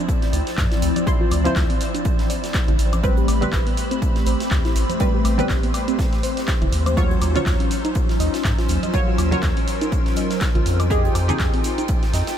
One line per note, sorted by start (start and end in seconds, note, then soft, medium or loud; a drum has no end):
0.00 1.04 F3 medium
0.00 3.00 F3 medium
0.00 3.00 C4 medium
0.00 1.04 E4 medium
0.00 3.00 E4 medium
0.00 1.05 C5 medium
0.00 12.38 C5 medium
0.00 3.00 D5 medium
0.00 12.38 E6 medium
0.09 kick loud
0.09 closed hi-hat medium
0.09 shaker soft
0.22 snare soft
0.22 closed hi-hat medium
0.33 0.42 D2 medium
0.33 0.41 D5 loud
0.33 closed hi-hat medium
0.33 open hi-hat loud
0.33 shaker medium
0.47 snare soft
0.47 closed hi-hat medium
0.47 shaker soft
0.57 0.67 G2 loud
0.57 kick loud
0.57 snare loud
0.57 clap loud
0.57 closed hi-hat medium
0.57 shaker soft
0.72 0.75 E4 medium
0.72 snare medium
0.72 closed hi-hat medium
0.82 0.91 D2 medium
0.82 closed hi-hat medium
0.82 open hi-hat loud
0.82 shaker medium
0.96 1.06 D5 medium
0.96 closed hi-hat medium
0.96 high conga medium
0.96 shaker soft
1.07 1.42 F3 medium
1.07 1.42 E4 medium
1.07 1.42 C5 loud
1.07 kick loud
1.07 closed hi-hat medium
1.07 shaker soft
1.21 1.30 F4 loud
1.31 1.49 D2 loud
1.31 closed hi-hat medium
1.31 open hi-hat loud
1.31 high woodblock medium
1.31 shaker medium
1.44 3.01 F3 loud
1.44 1.55 C4 medium
1.44 3.01 E4 medium
1.44 3.01 C5 loud
1.44 closed hi-hat medium
1.44 high conga medium
1.44 low conga medium
1.44 shaker soft
1.56 1.65 D2 medium
1.56 kick loud
1.56 snare loud
1.56 clap loud
1.56 closed hi-hat medium
1.56 shaker soft
1.70 1.76 C4 medium
1.70 open hi-hat medium
1.81 closed hi-hat medium
1.81 open hi-hat loud
1.81 shaker medium
1.95 1.98 D4 loud
1.95 closed hi-hat medium
1.95 shaker soft
2.05 kick loud
2.05 closed hi-hat medium
2.05 shaker soft
2.19 snare soft
2.19 closed hi-hat medium
2.30 2.38 D5 loud
2.30 closed hi-hat medium
2.30 open hi-hat loud
2.30 shaker medium
2.44 snare medium
2.44 closed hi-hat medium
2.44 shaker soft
2.54 kick loud
2.54 snare loud
2.54 clap loud
2.54 closed hi-hat medium
2.54 shaker soft
2.68 2.75 A1 medium
2.68 2.72 E4 medium
2.68 closed hi-hat medium
2.68 high conga medium
2.68 low conga medium
2.79 3.22 A1 medium
2.79 closed hi-hat medium
2.79 open hi-hat loud
2.79 shaker medium
2.93 3.02 D5 medium
2.93 closed hi-hat soft
2.93 closed hi-hat medium
2.93 high conga medium
2.93 high woodblock medium
2.93 shaker soft
3.03 3.39 G3 medium
3.03 6.93 A3 medium
3.03 3.39 C4 medium
3.03 6.93 C4 medium
3.03 6.93 G4 medium
3.03 3.39 B4 loud
3.03 6.93 B5 loud
3.03 kick loud
3.03 closed hi-hat medium
3.03 shaker soft
3.17 3.27 G4 loud
3.17 closed hi-hat soft
3.28 3.45 A1 loud
3.28 closed hi-hat medium
3.28 open hi-hat loud
3.28 high woodblock medium
3.28 shaker medium
3.41 4.97 G3 medium
3.41 3.52 B3 medium
3.41 4.98 C4 medium
3.41 4.98 B4 medium
3.41 closed hi-hat medium
3.41 high conga medium
3.41 low conga loud
3.41 shaker soft
3.52 3.62 A1 medium
3.52 kick loud
3.52 snare loud
3.52 clap loud
3.52 closed hi-hat medium
3.52 shaker soft
3.67 3.73 B3 medium
3.67 open hi-hat medium
3.77 closed hi-hat medium
3.77 open hi-hat loud
3.77 shaker medium
3.91 3.95 C4 loud
3.91 closed hi-hat medium
3.91 shaker soft
4.02 kick loud
4.02 closed hi-hat loud
4.02 shaker soft
4.16 snare soft
4.16 closed hi-hat medium
4.26 4.36 A1 medium
4.26 4.35 C5 loud
4.26 closed hi-hat medium
4.26 open hi-hat loud
4.26 shaker medium
4.40 snare medium
4.40 closed hi-hat medium
4.40 shaker soft
4.51 4.60 D2 loud
4.51 kick loud
4.51 snare loud
4.51 clap loud
4.51 closed hi-hat medium
4.51 shaker soft
4.65 4.69 E4 medium
4.65 snare medium
4.65 closed hi-hat soft
4.76 4.85 A1 medium
4.76 closed hi-hat medium
4.76 open hi-hat loud
4.76 shaker medium
4.89 4.99 C5 medium
4.89 closed hi-hat medium
4.89 high conga medium
4.89 shaker soft
5.00 5.35 G3 medium
5.00 5.35 C4 medium
5.00 5.36 B4 loud
5.00 kick loud
5.00 closed hi-hat loud
5.00 shaker soft
5.14 5.24 G4 loud
5.25 5.42 A1 loud
5.25 closed hi-hat medium
5.25 open hi-hat loud
5.25 high woodblock medium
5.25 shaker medium
5.38 6.94 G3 medium
5.38 5.48 B3 medium
5.38 6.95 C4 medium
5.38 6.95 B4 loud
5.38 closed hi-hat medium
5.38 high conga medium
5.38 low conga loud
5.38 shaker soft
5.49 5.59 A1 medium
5.49 kick loud
5.49 snare loud
5.49 clap loud
5.49 closed hi-hat medium
5.49 shaker soft
5.63 5.70 B3 medium
5.63 open hi-hat medium
5.74 closed hi-hat medium
5.74 open hi-hat loud
5.74 high woodblock medium
5.74 shaker medium
5.88 5.92 C4 loud
5.88 closed hi-hat medium
5.88 shaker soft
5.99 kick loud
5.99 snare loud
5.99 closed hi-hat medium
5.99 shaker soft
6.13 snare soft
6.13 closed hi-hat medium
6.23 6.32 C5 loud
6.23 closed hi-hat medium
6.23 open hi-hat loud
6.23 shaker medium
6.37 snare medium
6.37 closed hi-hat medium
6.37 shaker soft
6.48 kick loud
6.48 snare loud
6.48 clap loud
6.48 closed hi-hat medium
6.48 shaker soft
6.62 6.69 E1 medium
6.62 6.66 E4 medium
6.62 closed hi-hat soft
6.62 high conga medium
6.62 low conga medium
6.72 7.16 D#2 medium
6.72 closed hi-hat medium
6.72 open hi-hat loud
6.72 shaker medium
6.86 6.96 C5 medium
6.86 closed hi-hat medium
6.86 closed hi-hat soft
6.86 high conga medium
6.86 high woodblock medium
6.86 shaker soft
6.97 7.32 F#3 loud
6.97 10.87 F#3 medium
6.97 10.87 C#4 medium
6.97 8.92 D#4 loud
6.97 12.38 F4 medium
6.97 7.32 F4 medium
6.97 7.32 C#5 loud
6.97 kick loud
6.97 closed hi-hat medium
6.97 shaker soft
7.11 7.20 F#4 loud
7.11 closed hi-hat soft
7.21 7.39 D#2 loud
7.21 closed hi-hat medium
7.21 open hi-hat loud
7.21 high woodblock medium
7.21 shaker medium
7.35 8.91 F#3 medium
7.35 7.45 C#4 medium
7.35 8.91 F4 medium
7.35 8.92 C#5 medium
7.35 closed hi-hat medium
7.35 high conga medium
7.35 low conga medium
7.35 shaker soft
7.46 7.55 D#2 medium
7.46 kick loud
7.46 snare loud
7.46 clap loud
7.46 closed hi-hat medium
7.46 shaker soft
7.60 7.66 C#4 medium
7.60 open hi-hat medium
7.71 closed hi-hat medium
7.71 open hi-hat loud
7.71 shaker medium
7.85 7.89 D#4 loud
7.85 closed hi-hat medium
7.85 shaker soft
7.95 kick loud
7.95 closed hi-hat medium
7.95 shaker soft
8.09 snare soft
8.09 closed hi-hat medium
8.20 8.29 D#2 medium
8.20 8.28 D#5 loud
8.20 closed hi-hat medium
8.20 open hi-hat loud
8.20 shaker medium
8.34 snare medium
8.34 closed hi-hat medium
8.34 shaker soft
8.44 8.54 G#2 loud
8.44 kick loud
8.44 snare loud
8.44 clap loud
8.44 closed hi-hat medium
8.44 shaker soft
8.58 8.62 F4 medium
8.58 snare medium
8.58 closed hi-hat soft
8.69 8.78 D#2 medium
8.69 closed hi-hat medium
8.69 open hi-hat loud
8.69 shaker medium
8.83 8.93 D#5 medium
8.83 closed hi-hat medium
8.83 high conga medium
8.83 shaker soft
8.93 9.29 F#3 medium
8.93 9.29 F4 medium
8.93 10.89 A#4 medium
8.93 9.29 C#5 loud
8.93 kick loud
8.93 closed hi-hat medium
8.93 shaker soft
9.08 9.17 F#4 loud
9.18 9.36 D#2 loud
9.18 closed hi-hat medium
9.18 open hi-hat loud
9.18 high woodblock medium
9.18 shaker medium
9.31 10.88 F#3 loud
9.31 9.42 C#4 medium
9.31 10.88 F4 medium
9.31 10.88 C#5 loud
9.31 closed hi-hat medium
9.31 high conga medium
9.31 low conga medium
9.31 shaker soft
9.43 9.52 D#2 medium
9.43 kick loud
9.43 snare loud
9.43 clap loud
9.43 closed hi-hat medium
9.43 shaker soft
9.57 9.63 C#4 medium
9.57 open hi-hat medium
9.68 closed hi-hat medium
9.68 open hi-hat loud
9.68 shaker medium
9.81 9.85 D#4 loud
9.81 closed hi-hat medium
9.81 shaker soft
9.92 kick loud
9.92 closed hi-hat medium
9.92 shaker soft
10.06 snare soft
10.06 closed hi-hat medium
10.16 10.25 D#5 loud
10.16 closed hi-hat medium
10.16 open hi-hat loud
10.16 shaker medium
10.30 snare medium
10.30 closed hi-hat medium
10.30 shaker soft
10.41 kick loud
10.41 snare loud
10.41 clap loud
10.41 closed hi-hat medium
10.41 shaker soft
10.55 10.62 A#1 medium
10.55 10.59 F4 medium
10.55 closed hi-hat medium
10.55 high conga medium
10.55 low conga medium
10.66 11.09 F2 medium
10.66 closed hi-hat medium
10.66 open hi-hat loud
10.66 shaker medium
10.80 10.89 D#5 medium
10.80 closed hi-hat medium
10.80 closed hi-hat soft
10.80 high conga medium
10.80 high woodblock medium
10.80 shaker soft
10.90 11.26 D#4 medium
10.90 12.38 D#4 loud
10.90 11.25 G4 medium
10.90 11.26 G#4 loud
10.90 12.38 G5 medium
10.90 kick loud
10.90 closed hi-hat medium
10.90 shaker soft
11.04 11.14 G4 loud
11.04 closed hi-hat soft
11.15 11.32 F2 loud
11.15 closed hi-hat medium
11.15 open hi-hat loud
11.15 high woodblock medium
11.15 shaker medium
11.28 11.39 C4 medium
11.28 12.38 D#4 medium
11.28 12.38 G4 medium
11.28 12.38 G#4 medium
11.28 closed hi-hat medium
11.28 high conga medium
11.28 low conga medium
11.28 shaker medium
11.39 11.49 F2 medium
11.39 kick loud
11.39 snare loud
11.39 clap loud
11.39 closed hi-hat medium
11.39 shaker soft
11.54 11.60 C4 medium
11.54 open hi-hat medium
11.64 closed hi-hat medium
11.64 open hi-hat loud
11.64 shaker medium
11.78 11.82 D#4 loud
11.78 closed hi-hat medium
11.78 shaker soft
11.88 kick loud
11.88 closed hi-hat loud
11.88 shaker soft
12.03 snare soft
12.03 closed hi-hat medium
12.14 12.23 F2 medium
12.14 12.22 D#5 loud
12.14 snare loud
12.14 closed hi-hat medium
12.14 open hi-hat loud
12.14 shaker medium
12.27 snare loud
12.27 closed hi-hat medium
12.27 shaker soft